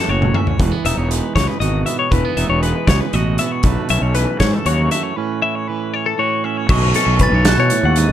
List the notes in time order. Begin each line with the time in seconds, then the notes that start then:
Already playing: E3 C#4 E4
0.08 F#1 A2 F#4 C#5
0.22 mid tom
0.34 C#4 E5, mid tom
0.47 C#5, floor tom
0.59 E1 E3 A3 B4, kick, closed hi-hat
0.72 B3
0.84 E1 D#4 E5, closed hi-hat
0.97 E1 C#5
1.10 G#3 B4, closed hi-hat
1.35 C#2 C#5, kick, snare, closed hi-hat
1.48 B4
1.60 G#1 B2 F#4 D#5, closed hi-hat
1.86 B3 E5, closed hi-hat
1.99 C#5
2.11 E1 E3 A3 B4, kick, closed hi-hat
2.25 B3
2.37 E1 D#4 E5, closed hi-hat
2.49 E1 C#5
2.63 G#3 B4, closed hi-hat
2.87 C#2 C#5, kick, snare, closed hi-hat
3.00 B4
3.13 A1 B2 F#4 D#5, closed hi-hat
3.38 B3 E5, closed hi-hat
3.52 C#5
3.63 B1 B2 A3 B4, kick, closed hi-hat
3.89 B1 C#4 E5, closed hi-hat
4.02 B1 C#5
4.15 E3 B4, closed hi-hat
4.40 G#2 C#5, kick, snare, closed hi-hat
4.54 A4
4.66 D#2 F#2 F#4 C#5, closed hi-hat
4.91 A3 E5, closed hi-hat
5.03 C#5
5.16 A2 C#4 B4
5.42 E4 E5
5.55 C#5
5.68 E3 B4
5.94 C#5
6.06 A4
6.18 A2 F#4 C#5
6.44 C#4 E5
6.57 C#5
6.69 B1 B2 A3 C#4 F#4 D#5 C#6, kick, crash
6.83 C#5
6.94 C#4 A4, closed hi-hat
7.06 B1
7.19 E3 B4 A6, kick, closed hi-hat
7.32 B1 C#5
7.45 B2 A4 F#6, snare, closed hi-hat
7.57 B2 C#5
7.70 A2, closed hi-hat
7.83 D#2 F#5
7.96 G#2 D#5, closed hi-hat
8.09 A1